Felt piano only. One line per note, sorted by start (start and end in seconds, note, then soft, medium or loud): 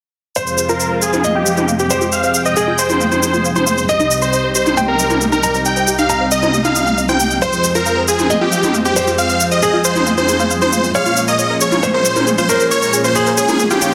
0.36 1.15 C5 loud
1.24 1.82 D#5 medium
1.90 2.48 C5 medium
2.57 3.80 G#4 medium
3.89 4.68 D#5 medium
4.77 5.35 G5 medium
5.43 6.01 A#5 medium
6.09 7.33 A#5 medium
7.42 8.21 C5 medium
8.30 8.87 D#5 medium
8.96 9.54 C5 medium
9.63 10.86 G#4 medium
10.95 11.74 C#5 loud
11.83 12.40 C5 medium
12.49 13.07 A#4 medium
13.15 13.94 G#4 medium